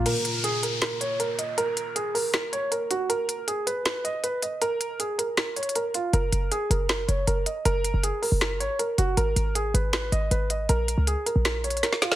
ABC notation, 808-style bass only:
X:1
M:4/4
L:1/16
Q:1/4=158
K:F#
V:1 name="808-style bass" clef=bass
z16 | z16 | z16 | z16 |
F,,,2 F,,,2 z2 F,,,4 F,,,2 F,,,2 z2 | F,,,3 F,,,2 z2 F,,,3 G,,, z3 F,,,2 | G,,,2 G,,,4 G,,,4 G,,,2 G,,,4 | A,,,3 C,,2 z2 A,,,4- A,,, z4 |]